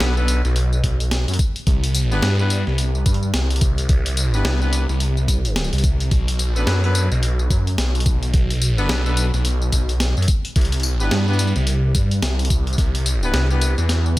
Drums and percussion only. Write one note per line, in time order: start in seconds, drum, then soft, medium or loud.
0.00 snare loud
0.00 tambourine soft
0.17 tambourine soft
0.28 closed hi-hat medium
0.28 tambourine medium
0.45 snare soft
0.45 tambourine soft
0.56 closed hi-hat medium
0.56 tambourine soft
0.73 tambourine soft
0.84 kick medium
0.84 snare soft
0.84 closed hi-hat medium
1.00 closed hi-hat soft
1.00 tambourine soft
1.11 snare loud
1.11 closed hi-hat medium
1.11 tambourine soft
1.28 closed hi-hat medium
1.28 tambourine soft
1.34 closed hi-hat medium
1.39 kick loud
1.39 closed hi-hat medium
1.39 tambourine medium
1.56 closed hi-hat soft
1.56 tambourine soft
1.67 kick loud
1.67 closed hi-hat medium
1.67 tambourine soft
1.84 closed hi-hat medium
1.84 tambourine soft
1.95 closed hi-hat medium
1.95 tambourine medium
2.12 tambourine soft
2.23 snare loud
2.23 tambourine soft
2.39 tambourine soft
2.50 closed hi-hat medium
2.50 tambourine medium
2.67 snare soft
2.78 closed hi-hat medium
2.78 tambourine soft
2.95 tambourine soft
3.06 kick loud
3.06 closed hi-hat medium
3.06 tambourine medium
3.14 closed hi-hat soft
3.23 tambourine soft
3.34 snare loud
3.34 closed hi-hat medium
3.34 tambourine soft
3.50 closed hi-hat soft
3.50 tambourine soft
3.56 closed hi-hat medium
3.61 kick loud
3.61 closed hi-hat medium
3.61 tambourine medium
3.78 closed hi-hat soft
3.78 tambourine soft
3.89 kick loud
3.89 closed hi-hat medium
3.89 tambourine soft
4.06 closed hi-hat medium
4.06 tambourine soft
4.17 closed hi-hat medium
4.17 tambourine medium
4.34 tambourine soft
4.45 snare loud
4.45 tambourine soft
4.62 tambourine soft
4.73 closed hi-hat medium
4.73 tambourine medium
4.89 snare soft
4.89 tambourine soft
5.00 closed hi-hat medium
5.00 tambourine soft
5.17 tambourine soft
5.28 kick medium
5.28 snare soft
5.28 closed hi-hat medium
5.28 tambourine medium
5.45 closed hi-hat soft
5.45 tambourine soft
5.56 snare loud
5.56 closed hi-hat medium
5.56 tambourine soft
5.64 tambourine soft
5.73 closed hi-hat soft
5.73 tambourine soft
5.78 closed hi-hat medium
5.78 tambourine soft
5.84 kick loud
5.84 closed hi-hat medium
5.84 tambourine medium
6.00 closed hi-hat soft
6.00 tambourine soft
6.11 kick loud
6.11 closed hi-hat medium
6.11 tambourine soft
6.28 closed hi-hat medium
6.28 tambourine soft
6.39 closed hi-hat medium
6.39 tambourine medium
6.56 tambourine soft
6.67 snare loud
6.67 tambourine soft
6.84 tambourine soft
6.95 closed hi-hat medium
6.95 tambourine medium
7.12 snare soft
7.12 tambourine soft
7.23 closed hi-hat medium
7.23 tambourine soft
7.39 tambourine soft
7.50 kick loud
7.50 closed hi-hat medium
7.50 tambourine medium
7.67 closed hi-hat soft
7.67 tambourine soft
7.78 snare loud
7.78 closed hi-hat medium
7.78 tambourine soft
7.95 closed hi-hat soft
7.95 tambourine soft
8.00 closed hi-hat medium
8.06 kick loud
8.06 closed hi-hat medium
8.06 tambourine medium
8.23 closed hi-hat soft
8.23 tambourine soft
8.34 kick loud
8.34 closed hi-hat medium
8.34 tambourine soft
8.50 closed hi-hat medium
8.50 tambourine soft
8.62 closed hi-hat medium
8.62 tambourine medium
8.78 tambourine soft
8.89 snare loud
8.89 tambourine soft
9.06 tambourine soft
9.17 closed hi-hat medium
9.17 tambourine medium
9.34 snare soft
9.34 tambourine soft
9.45 closed hi-hat medium
9.45 tambourine soft
9.62 tambourine soft
9.72 kick medium
9.72 snare soft
9.72 closed hi-hat medium
9.72 tambourine medium
9.89 closed hi-hat soft
9.89 tambourine soft
10.00 snare loud
10.00 closed hi-hat medium
10.00 tambourine soft
10.17 tambourine soft
10.22 closed hi-hat medium
10.28 kick loud
10.28 closed hi-hat medium
10.28 tambourine medium
10.45 closed hi-hat soft
10.45 tambourine soft
10.56 kick loud
10.56 closed hi-hat medium
10.56 tambourine soft
10.61 closed hi-hat medium
10.65 closed hi-hat medium
10.72 closed hi-hat medium
10.72 tambourine soft
10.74 closed hi-hat soft
10.80 closed hi-hat soft
10.80 tambourine medium
11.00 tambourine soft
11.11 snare loud
11.11 tambourine soft
11.28 tambourine soft
11.33 tambourine soft
11.39 closed hi-hat medium
11.39 tambourine medium
11.47 tambourine soft
11.56 snare soft
11.56 tambourine soft
11.67 closed hi-hat medium
11.67 tambourine soft
11.95 kick loud
11.95 closed hi-hat medium
11.95 tambourine medium
12.11 closed hi-hat soft
12.11 tambourine soft
12.23 snare loud
12.23 closed hi-hat medium
12.23 tambourine soft
12.39 closed hi-hat soft
12.39 tambourine soft
12.45 closed hi-hat medium
12.50 kick loud
12.50 closed hi-hat medium
12.50 tambourine medium
12.67 closed hi-hat soft
12.73 tambourine soft
12.78 kick loud
12.78 closed hi-hat medium
12.78 tambourine soft
12.95 closed hi-hat medium
12.95 tambourine soft
13.06 closed hi-hat medium
13.06 tambourine medium
13.23 tambourine soft
13.34 snare loud
13.34 tambourine soft
13.50 tambourine soft
13.61 closed hi-hat medium
13.61 tambourine medium
13.78 snare soft
13.78 tambourine soft
13.89 snare medium
13.89 closed hi-hat medium
13.89 tambourine soft
14.06 tambourine soft